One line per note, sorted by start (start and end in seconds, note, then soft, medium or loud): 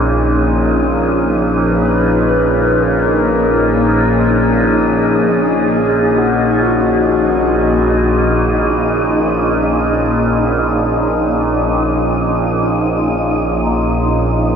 0.00 14.56 A#1 medium
0.00 14.56 A#2 medium
0.00 14.56 C#4 medium
0.00 0.53 D#4 medium
0.00 14.56 D#4 medium
0.00 14.56 G#4 medium
0.00 14.56 C#5 medium
0.00 0.52 D#5 medium
0.54 14.56 D#4 medium
0.54 14.56 D#5 medium
1.67 2.83 B4 loud
2.82 4.98 A#4 loud
4.98 5.07 A#4 medium
5.06 6.19 G#4 loud
6.18 8.45 F#4 medium